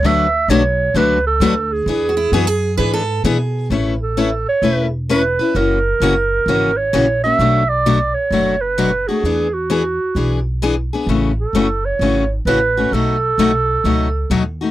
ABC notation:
X:1
M:4/4
L:1/16
Q:"Swing" 1/4=130
K:A
V:1 name="Clarinet"
e4 c4 B2 A4 G2- | G12 z4 | z2 A4 c4 z2 B4 | ^A8- A2 c4 e2- |
e2 d4 c4 B4 G2- | G2 F8 z6 | z2 A4 c4 z2 B4 | A12- A2 z2 |]
V:2 name="Steel-string acoustic guitar"
z16 | z3/2 F/2 E2 F G3 B A3 G4 | z16 | z16 |
z16 | z16 | z16 | z16 |]
V:3 name="Steel-string acoustic guitar"
[D,F,A,DFB]2 z2 [D,F,A,DFB]2 z2 [D,F,A,DFB]2 z2 [D,F,A,DFB]2 z2 | [E,B,DG]2 z2 [E,B,DG]2 z2 [E,B,DG]2 z2 [E,B,DG]2 z2 | [A,CEB]2 z2 [A,CEB]2 z2 [A,CEB]2 z2 [A,CEB]2 [CEB]2 | [C,E,^A,CF]2 z2 [C,E,A,CF]2 z2 [C,E,A,CF]2 z2 [C,E,A,CF]2 [A,CF]2 |
[B,,F,A,DF]2 z2 [B,,F,A,DF]2 z2 [B,,F,A,DF]2 z2 [B,,F,A,DF]2 [A,DF]2 | [E,B,DG]2 z2 [E,B,DG]2 z2 [E,B,DG]2 z2 [E,B,DG]2 [B,DG]2 | [C,E,A,CF]2 z2 [C,E,A,CF]2 z2 [C,E,A,CF]2 z2 [C,E,A,CF]2 [A,CF]2 | [B,,F,A,^DF]2 z2 [B,,F,A,DF]2 z2 [B,,F,A,DF]2 z2 [B,,F,A,DF]2 [A,DF]2 |]
V:4 name="Upright bass" clef=bass
D,,4 B,,,4 C,,4 D,,4 | E,,4 F,,4 G,,4 B,,4 | A,,,8 E,,,8 | F,,,4 F,,,4 G,,,4 ^A,,,4 |
B,,,8 F,,,8 | E,,8 B,,,8 | A,,,4 F,,,4 G,,,4 A,,,4 | B,,,4 B,,,4 C,,4 ^D,,4 |]